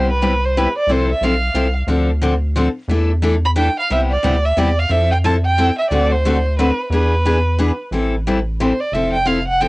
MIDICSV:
0, 0, Header, 1, 4, 480
1, 0, Start_track
1, 0, Key_signature, 0, "minor"
1, 0, Tempo, 335758
1, 1258, Time_signature, 3, 2, 24, 8
1, 13841, End_track
2, 0, Start_track
2, 0, Title_t, "Violin"
2, 0, Program_c, 0, 40
2, 0, Note_on_c, 0, 72, 90
2, 145, Note_off_c, 0, 72, 0
2, 169, Note_on_c, 0, 71, 88
2, 642, Note_on_c, 0, 72, 84
2, 663, Note_off_c, 0, 71, 0
2, 829, Note_on_c, 0, 71, 87
2, 851, Note_off_c, 0, 72, 0
2, 1099, Note_off_c, 0, 71, 0
2, 1118, Note_on_c, 0, 74, 88
2, 1306, Note_on_c, 0, 72, 87
2, 1328, Note_off_c, 0, 74, 0
2, 1577, Note_off_c, 0, 72, 0
2, 1605, Note_on_c, 0, 76, 84
2, 1774, Note_on_c, 0, 77, 83
2, 1795, Note_off_c, 0, 76, 0
2, 2531, Note_off_c, 0, 77, 0
2, 4936, Note_on_c, 0, 83, 100
2, 5014, Note_off_c, 0, 83, 0
2, 5113, Note_on_c, 0, 79, 92
2, 5380, Note_off_c, 0, 79, 0
2, 5422, Note_on_c, 0, 77, 89
2, 5581, Note_off_c, 0, 77, 0
2, 5600, Note_on_c, 0, 76, 93
2, 5728, Note_off_c, 0, 76, 0
2, 5879, Note_on_c, 0, 74, 92
2, 6366, Note_on_c, 0, 76, 96
2, 6387, Note_off_c, 0, 74, 0
2, 6555, Note_on_c, 0, 74, 92
2, 6577, Note_off_c, 0, 76, 0
2, 6851, Note_on_c, 0, 77, 91
2, 6873, Note_off_c, 0, 74, 0
2, 7022, Note_on_c, 0, 76, 100
2, 7043, Note_off_c, 0, 77, 0
2, 7307, Note_off_c, 0, 76, 0
2, 7315, Note_on_c, 0, 79, 87
2, 7398, Note_off_c, 0, 79, 0
2, 7499, Note_on_c, 0, 81, 94
2, 7632, Note_off_c, 0, 81, 0
2, 7796, Note_on_c, 0, 79, 106
2, 8241, Note_off_c, 0, 79, 0
2, 8268, Note_on_c, 0, 76, 87
2, 8436, Note_off_c, 0, 76, 0
2, 8444, Note_on_c, 0, 74, 93
2, 8745, Note_on_c, 0, 72, 85
2, 8766, Note_off_c, 0, 74, 0
2, 9413, Note_off_c, 0, 72, 0
2, 9432, Note_on_c, 0, 71, 86
2, 9871, Note_off_c, 0, 71, 0
2, 9901, Note_on_c, 0, 71, 83
2, 11097, Note_off_c, 0, 71, 0
2, 12316, Note_on_c, 0, 72, 77
2, 12581, Note_on_c, 0, 74, 86
2, 12603, Note_off_c, 0, 72, 0
2, 12773, Note_on_c, 0, 76, 81
2, 12795, Note_off_c, 0, 74, 0
2, 13048, Note_off_c, 0, 76, 0
2, 13057, Note_on_c, 0, 79, 96
2, 13251, Note_on_c, 0, 77, 79
2, 13273, Note_off_c, 0, 79, 0
2, 13540, Note_off_c, 0, 77, 0
2, 13549, Note_on_c, 0, 78, 96
2, 13737, Note_on_c, 0, 79, 100
2, 13758, Note_off_c, 0, 78, 0
2, 13841, Note_off_c, 0, 79, 0
2, 13841, End_track
3, 0, Start_track
3, 0, Title_t, "Steel-string acoustic guitar"
3, 0, Program_c, 1, 25
3, 312, Note_on_c, 1, 55, 81
3, 317, Note_on_c, 1, 48, 92
3, 322, Note_on_c, 1, 59, 88
3, 329, Note_on_c, 1, 64, 85
3, 332, Note_on_c, 1, 67, 82
3, 465, Note_off_c, 1, 55, 0
3, 467, Note_off_c, 1, 48, 0
3, 470, Note_off_c, 1, 59, 0
3, 473, Note_off_c, 1, 64, 0
3, 475, Note_off_c, 1, 67, 0
3, 817, Note_on_c, 1, 48, 93
3, 817, Note_on_c, 1, 55, 86
3, 817, Note_on_c, 1, 59, 92
3, 823, Note_on_c, 1, 64, 100
3, 832, Note_on_c, 1, 67, 98
3, 957, Note_off_c, 1, 48, 0
3, 957, Note_off_c, 1, 55, 0
3, 957, Note_off_c, 1, 59, 0
3, 960, Note_off_c, 1, 64, 0
3, 965, Note_off_c, 1, 67, 0
3, 1273, Note_on_c, 1, 48, 60
3, 1279, Note_on_c, 1, 60, 69
3, 1280, Note_on_c, 1, 64, 75
3, 1284, Note_on_c, 1, 53, 66
3, 1298, Note_on_c, 1, 69, 79
3, 1564, Note_off_c, 1, 48, 0
3, 1568, Note_off_c, 1, 60, 0
3, 1568, Note_off_c, 1, 64, 0
3, 1570, Note_off_c, 1, 53, 0
3, 1577, Note_off_c, 1, 69, 0
3, 1757, Note_on_c, 1, 48, 77
3, 1766, Note_on_c, 1, 53, 91
3, 1769, Note_on_c, 1, 60, 89
3, 1775, Note_on_c, 1, 64, 90
3, 1776, Note_on_c, 1, 69, 97
3, 1907, Note_off_c, 1, 48, 0
3, 1911, Note_off_c, 1, 53, 0
3, 1913, Note_off_c, 1, 60, 0
3, 1916, Note_off_c, 1, 64, 0
3, 1916, Note_off_c, 1, 69, 0
3, 2210, Note_on_c, 1, 48, 92
3, 2216, Note_on_c, 1, 60, 100
3, 2218, Note_on_c, 1, 53, 88
3, 2229, Note_on_c, 1, 64, 93
3, 2233, Note_on_c, 1, 69, 92
3, 2373, Note_off_c, 1, 48, 0
3, 2377, Note_off_c, 1, 53, 0
3, 2377, Note_off_c, 1, 60, 0
3, 2383, Note_off_c, 1, 64, 0
3, 2385, Note_off_c, 1, 69, 0
3, 2685, Note_on_c, 1, 50, 66
3, 2691, Note_on_c, 1, 53, 73
3, 2693, Note_on_c, 1, 60, 74
3, 2706, Note_on_c, 1, 62, 71
3, 2709, Note_on_c, 1, 69, 72
3, 2990, Note_off_c, 1, 50, 0
3, 2993, Note_off_c, 1, 53, 0
3, 2994, Note_off_c, 1, 60, 0
3, 3000, Note_off_c, 1, 62, 0
3, 3002, Note_off_c, 1, 69, 0
3, 3169, Note_on_c, 1, 50, 83
3, 3170, Note_on_c, 1, 53, 89
3, 3186, Note_on_c, 1, 60, 100
3, 3186, Note_on_c, 1, 62, 98
3, 3188, Note_on_c, 1, 69, 93
3, 3333, Note_off_c, 1, 50, 0
3, 3334, Note_off_c, 1, 53, 0
3, 3341, Note_off_c, 1, 60, 0
3, 3341, Note_off_c, 1, 62, 0
3, 3342, Note_off_c, 1, 69, 0
3, 3656, Note_on_c, 1, 50, 92
3, 3659, Note_on_c, 1, 53, 90
3, 3667, Note_on_c, 1, 62, 93
3, 3673, Note_on_c, 1, 60, 95
3, 3682, Note_on_c, 1, 69, 92
3, 3816, Note_off_c, 1, 50, 0
3, 3818, Note_off_c, 1, 53, 0
3, 3822, Note_off_c, 1, 62, 0
3, 3825, Note_off_c, 1, 60, 0
3, 3829, Note_off_c, 1, 69, 0
3, 4137, Note_on_c, 1, 52, 70
3, 4138, Note_on_c, 1, 57, 71
3, 4157, Note_on_c, 1, 69, 76
3, 4158, Note_on_c, 1, 62, 74
3, 4158, Note_on_c, 1, 64, 70
3, 4436, Note_off_c, 1, 52, 0
3, 4437, Note_off_c, 1, 57, 0
3, 4446, Note_off_c, 1, 69, 0
3, 4447, Note_off_c, 1, 62, 0
3, 4447, Note_off_c, 1, 64, 0
3, 4606, Note_on_c, 1, 57, 89
3, 4613, Note_on_c, 1, 52, 81
3, 4623, Note_on_c, 1, 62, 93
3, 4623, Note_on_c, 1, 64, 86
3, 4632, Note_on_c, 1, 69, 100
3, 4771, Note_off_c, 1, 57, 0
3, 4775, Note_off_c, 1, 52, 0
3, 4780, Note_off_c, 1, 62, 0
3, 4780, Note_off_c, 1, 64, 0
3, 4784, Note_off_c, 1, 69, 0
3, 5085, Note_on_c, 1, 52, 86
3, 5086, Note_on_c, 1, 57, 92
3, 5090, Note_on_c, 1, 62, 89
3, 5097, Note_on_c, 1, 64, 92
3, 5104, Note_on_c, 1, 69, 95
3, 5251, Note_off_c, 1, 52, 0
3, 5251, Note_off_c, 1, 57, 0
3, 5253, Note_off_c, 1, 62, 0
3, 5257, Note_off_c, 1, 64, 0
3, 5261, Note_off_c, 1, 69, 0
3, 5575, Note_on_c, 1, 48, 71
3, 5580, Note_on_c, 1, 55, 74
3, 5583, Note_on_c, 1, 59, 73
3, 5588, Note_on_c, 1, 64, 67
3, 5600, Note_on_c, 1, 67, 73
3, 5876, Note_off_c, 1, 48, 0
3, 5878, Note_off_c, 1, 55, 0
3, 5879, Note_off_c, 1, 59, 0
3, 5882, Note_off_c, 1, 64, 0
3, 5888, Note_off_c, 1, 67, 0
3, 6044, Note_on_c, 1, 48, 87
3, 6058, Note_on_c, 1, 55, 88
3, 6060, Note_on_c, 1, 59, 93
3, 6062, Note_on_c, 1, 64, 94
3, 6065, Note_on_c, 1, 67, 102
3, 6210, Note_off_c, 1, 48, 0
3, 6218, Note_off_c, 1, 55, 0
3, 6218, Note_off_c, 1, 59, 0
3, 6219, Note_off_c, 1, 64, 0
3, 6221, Note_off_c, 1, 67, 0
3, 6529, Note_on_c, 1, 48, 83
3, 6540, Note_on_c, 1, 55, 83
3, 6547, Note_on_c, 1, 64, 97
3, 6548, Note_on_c, 1, 59, 92
3, 6555, Note_on_c, 1, 67, 97
3, 6693, Note_off_c, 1, 48, 0
3, 6699, Note_off_c, 1, 55, 0
3, 6702, Note_off_c, 1, 64, 0
3, 6703, Note_off_c, 1, 59, 0
3, 6706, Note_off_c, 1, 67, 0
3, 6993, Note_on_c, 1, 53, 67
3, 7008, Note_on_c, 1, 60, 67
3, 7016, Note_on_c, 1, 64, 68
3, 7019, Note_on_c, 1, 69, 68
3, 7304, Note_off_c, 1, 53, 0
3, 7312, Note_off_c, 1, 60, 0
3, 7316, Note_off_c, 1, 64, 0
3, 7317, Note_off_c, 1, 69, 0
3, 7493, Note_on_c, 1, 53, 89
3, 7496, Note_on_c, 1, 60, 88
3, 7500, Note_on_c, 1, 64, 92
3, 7509, Note_on_c, 1, 69, 100
3, 7655, Note_off_c, 1, 53, 0
3, 7656, Note_off_c, 1, 60, 0
3, 7658, Note_off_c, 1, 64, 0
3, 7663, Note_off_c, 1, 69, 0
3, 7977, Note_on_c, 1, 53, 88
3, 7984, Note_on_c, 1, 60, 92
3, 7991, Note_on_c, 1, 69, 101
3, 7992, Note_on_c, 1, 64, 102
3, 8137, Note_off_c, 1, 53, 0
3, 8140, Note_off_c, 1, 60, 0
3, 8144, Note_off_c, 1, 64, 0
3, 8144, Note_off_c, 1, 69, 0
3, 8449, Note_on_c, 1, 50, 68
3, 8460, Note_on_c, 1, 57, 74
3, 8461, Note_on_c, 1, 60, 73
3, 8464, Note_on_c, 1, 69, 75
3, 8468, Note_on_c, 1, 66, 78
3, 8752, Note_off_c, 1, 50, 0
3, 8758, Note_off_c, 1, 57, 0
3, 8758, Note_off_c, 1, 60, 0
3, 8760, Note_off_c, 1, 69, 0
3, 8762, Note_off_c, 1, 66, 0
3, 8939, Note_on_c, 1, 57, 100
3, 8946, Note_on_c, 1, 50, 87
3, 8949, Note_on_c, 1, 60, 92
3, 8954, Note_on_c, 1, 69, 103
3, 8956, Note_on_c, 1, 66, 104
3, 9098, Note_off_c, 1, 57, 0
3, 9101, Note_off_c, 1, 50, 0
3, 9103, Note_off_c, 1, 60, 0
3, 9105, Note_off_c, 1, 69, 0
3, 9106, Note_off_c, 1, 66, 0
3, 9419, Note_on_c, 1, 50, 90
3, 9424, Note_on_c, 1, 60, 86
3, 9426, Note_on_c, 1, 57, 84
3, 9432, Note_on_c, 1, 66, 98
3, 9439, Note_on_c, 1, 69, 99
3, 9577, Note_off_c, 1, 50, 0
3, 9580, Note_off_c, 1, 60, 0
3, 9581, Note_off_c, 1, 57, 0
3, 9584, Note_off_c, 1, 66, 0
3, 9588, Note_off_c, 1, 69, 0
3, 9899, Note_on_c, 1, 59, 73
3, 9901, Note_on_c, 1, 52, 69
3, 9906, Note_on_c, 1, 62, 74
3, 9919, Note_on_c, 1, 68, 80
3, 10197, Note_off_c, 1, 59, 0
3, 10198, Note_off_c, 1, 52, 0
3, 10200, Note_off_c, 1, 62, 0
3, 10207, Note_off_c, 1, 68, 0
3, 10369, Note_on_c, 1, 52, 91
3, 10377, Note_on_c, 1, 59, 90
3, 10386, Note_on_c, 1, 62, 95
3, 10387, Note_on_c, 1, 68, 98
3, 10533, Note_off_c, 1, 52, 0
3, 10536, Note_off_c, 1, 59, 0
3, 10541, Note_off_c, 1, 62, 0
3, 10541, Note_off_c, 1, 68, 0
3, 10844, Note_on_c, 1, 52, 83
3, 10851, Note_on_c, 1, 59, 84
3, 10858, Note_on_c, 1, 68, 102
3, 10863, Note_on_c, 1, 62, 93
3, 11010, Note_off_c, 1, 52, 0
3, 11013, Note_off_c, 1, 59, 0
3, 11017, Note_off_c, 1, 68, 0
3, 11019, Note_off_c, 1, 62, 0
3, 11327, Note_on_c, 1, 52, 69
3, 11333, Note_on_c, 1, 60, 61
3, 11335, Note_on_c, 1, 55, 65
3, 11348, Note_on_c, 1, 69, 69
3, 11350, Note_on_c, 1, 64, 66
3, 11631, Note_off_c, 1, 52, 0
3, 11634, Note_off_c, 1, 55, 0
3, 11634, Note_off_c, 1, 60, 0
3, 11641, Note_off_c, 1, 69, 0
3, 11642, Note_off_c, 1, 64, 0
3, 11821, Note_on_c, 1, 55, 91
3, 11822, Note_on_c, 1, 52, 82
3, 11834, Note_on_c, 1, 60, 86
3, 11835, Note_on_c, 1, 64, 95
3, 11839, Note_on_c, 1, 69, 89
3, 11978, Note_off_c, 1, 55, 0
3, 11979, Note_off_c, 1, 52, 0
3, 11984, Note_off_c, 1, 60, 0
3, 11985, Note_off_c, 1, 64, 0
3, 11987, Note_off_c, 1, 69, 0
3, 12296, Note_on_c, 1, 52, 87
3, 12296, Note_on_c, 1, 55, 93
3, 12300, Note_on_c, 1, 64, 94
3, 12307, Note_on_c, 1, 60, 88
3, 12320, Note_on_c, 1, 69, 89
3, 12456, Note_off_c, 1, 52, 0
3, 12456, Note_off_c, 1, 55, 0
3, 12458, Note_off_c, 1, 64, 0
3, 12461, Note_off_c, 1, 60, 0
3, 12468, Note_off_c, 1, 69, 0
3, 12786, Note_on_c, 1, 53, 68
3, 12790, Note_on_c, 1, 60, 67
3, 12791, Note_on_c, 1, 64, 73
3, 12800, Note_on_c, 1, 69, 72
3, 13080, Note_off_c, 1, 53, 0
3, 13082, Note_off_c, 1, 60, 0
3, 13083, Note_off_c, 1, 64, 0
3, 13087, Note_off_c, 1, 69, 0
3, 13231, Note_on_c, 1, 53, 80
3, 13231, Note_on_c, 1, 60, 83
3, 13249, Note_on_c, 1, 69, 91
3, 13253, Note_on_c, 1, 64, 87
3, 13403, Note_off_c, 1, 53, 0
3, 13403, Note_off_c, 1, 60, 0
3, 13412, Note_off_c, 1, 69, 0
3, 13414, Note_off_c, 1, 64, 0
3, 13731, Note_on_c, 1, 53, 77
3, 13738, Note_on_c, 1, 64, 90
3, 13744, Note_on_c, 1, 60, 87
3, 13754, Note_on_c, 1, 69, 91
3, 13841, Note_off_c, 1, 53, 0
3, 13841, Note_off_c, 1, 60, 0
3, 13841, Note_off_c, 1, 64, 0
3, 13841, Note_off_c, 1, 69, 0
3, 13841, End_track
4, 0, Start_track
4, 0, Title_t, "Analog synth bass"
4, 0, Program_c, 2, 38
4, 0, Note_on_c, 2, 36, 91
4, 957, Note_off_c, 2, 36, 0
4, 1243, Note_on_c, 2, 36, 90
4, 1633, Note_off_c, 2, 36, 0
4, 1733, Note_on_c, 2, 35, 89
4, 2143, Note_off_c, 2, 35, 0
4, 2206, Note_on_c, 2, 36, 90
4, 2619, Note_off_c, 2, 36, 0
4, 2674, Note_on_c, 2, 38, 94
4, 3836, Note_off_c, 2, 38, 0
4, 4118, Note_on_c, 2, 40, 100
4, 5278, Note_off_c, 2, 40, 0
4, 5584, Note_on_c, 2, 36, 95
4, 5966, Note_off_c, 2, 36, 0
4, 6062, Note_on_c, 2, 38, 85
4, 6469, Note_off_c, 2, 38, 0
4, 6531, Note_on_c, 2, 40, 84
4, 6942, Note_off_c, 2, 40, 0
4, 7001, Note_on_c, 2, 41, 93
4, 8159, Note_off_c, 2, 41, 0
4, 8447, Note_on_c, 2, 38, 93
4, 9603, Note_off_c, 2, 38, 0
4, 9865, Note_on_c, 2, 40, 100
4, 11030, Note_off_c, 2, 40, 0
4, 11313, Note_on_c, 2, 33, 94
4, 12474, Note_off_c, 2, 33, 0
4, 12753, Note_on_c, 2, 29, 92
4, 13841, Note_off_c, 2, 29, 0
4, 13841, End_track
0, 0, End_of_file